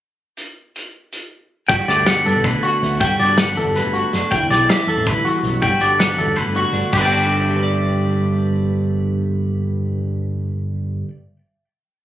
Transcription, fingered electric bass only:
1.70 1.77 G1 medium
1.89 2.05 D2 medium
2.26 2.34 G2 medium
2.36 2.52 B1 medium
2.83 3.03 D2 medium
3.01 3.09 G1 medium
3.19 3.53 G1 medium
3.57 3.65 E2 medium
3.67 3.83 G1 medium
3.85 4.01 G1 medium
4.13 4.21 F#1 medium
4.32 4.40 E1 medium
4.50 4.66 B1 medium
4.87 4.96 E2 medium
4.97 5.13 A1 medium
5.43 5.65 B1 medium
5.63 5.71 G1 medium
5.80 6.14 G1 medium
6.17 6.26 E2 medium
6.26 6.44 G1 medium
6.46 6.63 G1 medium
6.72 6.82 G1 medium
6.93 11.02 G1 medium

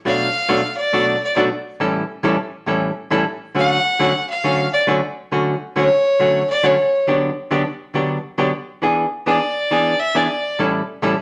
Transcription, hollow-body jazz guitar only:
0.05 0.27 B2 medium
0.05 0.27 F#3 medium
0.05 0.28 A3 medium
0.05 0.28 D4 medium
0.05 0.28 F#4 medium
0.48 0.61 B2 medium
0.48 0.61 F#3 medium
0.48 0.61 A3 medium
0.48 0.61 D4 medium
0.48 0.61 F#4 medium
0.93 1.15 B2 medium
0.93 1.15 F#3 medium
0.93 1.15 A3 medium
0.93 1.16 D4 medium
0.93 1.16 F#4 medium
1.36 1.48 B2 medium
1.36 1.48 F#3 medium
1.36 1.49 A3 medium
1.36 1.49 D4 medium
1.36 1.49 F#4 medium
1.80 2.03 A2 medium
1.80 2.03 E3 medium
1.80 2.03 G3 medium
1.80 2.03 C#4 medium
1.80 2.03 E4 medium
1.80 2.03 A4 medium
2.23 2.36 A2 medium
2.23 2.36 E3 medium
2.23 2.36 G3 medium
2.23 2.36 C#4 medium
2.23 2.36 E4 medium
2.23 2.36 A4 medium
2.66 2.90 A2 medium
2.66 2.90 E3 medium
2.66 2.90 G3 medium
2.66 2.91 C#4 medium
2.66 2.90 E4 medium
2.66 2.91 A4 medium
3.10 3.23 A2 medium
3.10 3.23 E3 medium
3.10 3.24 G3 medium
3.10 3.24 C#4 medium
3.10 3.24 E4 medium
3.10 3.24 A4 loud
3.55 3.78 D3 medium
3.55 3.78 F#3 medium
3.55 3.78 A3 medium
3.55 3.78 C#4 medium
3.55 3.78 F#4 medium
3.99 4.12 D3 medium
3.99 4.12 F#3 medium
3.99 4.12 A3 medium
3.99 4.12 C#4 medium
3.99 4.12 F#4 medium
4.44 4.66 D3 medium
4.44 4.66 F#3 medium
4.44 4.67 A3 medium
4.44 4.67 C#4 medium
4.44 4.67 F#4 medium
4.87 4.99 D3 medium
4.87 4.99 F#3 medium
4.87 5.00 A3 medium
4.87 5.00 C#4 medium
4.87 5.00 F#4 medium
5.32 5.54 D3 medium
5.32 5.54 F#3 medium
5.32 5.54 A3 medium
5.32 5.54 C#4 medium
5.32 5.55 F#4 medium
5.76 5.88 D3 medium
5.76 5.88 F#3 medium
5.76 5.88 A3 medium
5.76 5.88 C#4 medium
5.76 5.88 F#4 medium
6.20 6.42 D3 medium
6.20 6.42 F#3 medium
6.20 6.42 A3 medium
6.20 6.42 C#4 medium
6.20 6.42 F#4 medium
6.63 6.75 D3 medium
6.63 6.75 F#3 medium
6.63 6.75 A3 medium
6.63 6.76 C#4 medium
6.63 6.76 F#4 medium
7.07 7.30 D3 medium
7.07 7.30 F#3 medium
7.07 7.30 B3 medium
7.07 7.30 D4 medium
7.07 7.30 G4 medium
7.51 7.63 D3 medium
7.51 7.63 F#3 medium
7.51 7.63 B3 medium
7.51 7.63 D4 medium
7.51 7.63 G4 medium
7.94 8.17 D3 medium
7.94 8.17 F#3 medium
7.94 8.17 B3 medium
7.94 8.18 D4 medium
7.94 8.18 G4 medium
8.38 8.50 D3 medium
8.38 8.50 F#3 medium
8.38 8.50 B3 medium
8.38 8.51 D4 medium
8.38 8.51 G4 medium
8.82 9.05 E3 medium
8.82 9.05 B3 medium
8.82 9.05 D4 medium
8.82 9.05 G#4 medium
9.26 9.38 E3 medium
9.26 9.39 B3 medium
9.26 9.39 D4 medium
9.26 9.39 G#4 medium
9.71 9.93 E3 medium
9.71 9.93 B3 medium
9.71 9.94 D4 medium
9.71 9.94 G#4 medium
10.15 10.26 E3 medium
10.15 10.27 B3 medium
10.15 10.27 D4 medium
10.15 10.27 G#4 medium
10.59 10.81 A2 medium
10.59 10.81 E3 medium
10.59 10.81 G3 medium
10.59 10.81 C#4 medium
10.59 10.82 E4 medium
10.59 10.82 A4 medium
11.02 11.14 A2 medium
11.02 11.14 E3 medium
11.02 11.14 G3 medium
11.02 11.15 C#4 medium
11.02 11.15 E4 medium
11.02 11.15 A4 medium

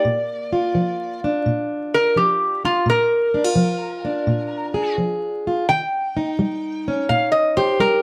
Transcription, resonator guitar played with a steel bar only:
0.00 1.20 D5 medium
1.94 2.17 A#4 medium
2.17 2.62 G4 medium
2.65 2.87 F4 medium
2.90 4.95 A#4 loud
5.69 7.05 G5 loud
7.09 7.31 F5 medium
7.32 7.54 D#5 medium
7.57 7.79 C5 medium
7.80 8.02 A#4 medium

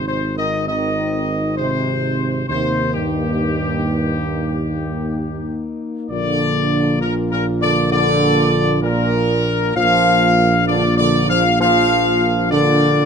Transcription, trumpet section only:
0.07 0.35 C5 medium
0.37 0.66 D#5 medium
0.68 1.54 D#5 medium
1.57 2.44 C5 medium
2.48 2.91 C5 medium
2.94 5.61 G4 medium
6.10 6.97 D5 loud
7.01 7.15 A#4 medium
7.31 7.45 A#4 loud
7.62 7.89 D5 loud
7.91 8.78 D5 loud
8.82 9.76 A#4 loud
9.76 10.64 F5 loud
10.67 10.97 D5 loud
10.98 11.26 D5 loud
11.30 11.58 F5 loud
11.60 12.47 F5 loud
12.51 13.05 D5 loud

